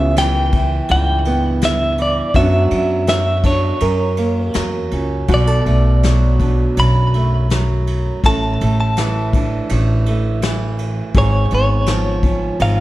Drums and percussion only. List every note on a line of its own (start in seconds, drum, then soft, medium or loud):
0.16 snare medium
0.16 ride medium
0.52 kick medium
0.52 ride soft
0.89 ride medium
1.25 ride soft
1.61 snare medium
1.61 ride medium
1.98 ride soft
2.34 kick medium
2.34 ride medium
2.71 ride medium
3.07 snare medium
3.07 ride medium
3.44 kick medium
3.44 ride medium
3.80 ride medium
4.17 ride medium
4.54 snare medium
4.54 ride medium
4.91 ride soft
5.28 kick medium
5.28 ride medium
5.66 ride soft
6.03 snare medium
6.03 ride medium
6.40 kick medium
6.40 ride medium
6.77 ride medium
7.14 ride soft
7.50 snare medium
7.50 ride medium
7.87 ride soft
8.24 kick medium
8.24 ride medium
8.61 ride medium
8.97 snare medium
8.97 ride medium
9.33 kick medium
9.33 ride medium
9.69 ride medium
10.06 ride medium
10.42 snare medium
10.42 ride medium
10.79 ride medium
11.14 kick medium
11.14 ride medium
11.50 ride medium
11.86 snare medium
11.86 ride medium
12.23 kick medium
12.23 ride soft
12.60 ride medium